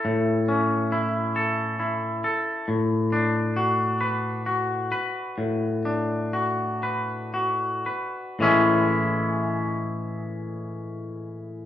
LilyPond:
\new Staff \with { instrumentName = "Clean electric guitar" } { \time 6/8 \key a \major \tempo 4. = 43 <a, e' a'>8 cis'8 e'8 a'8 e'8 a'8 | a,8 d'8 fis'8 b'8 fis'8 b'8 | a,8 d'8 fis'8 b'8 fis'8 b'8 | <a, e gis cis' e'>2. | }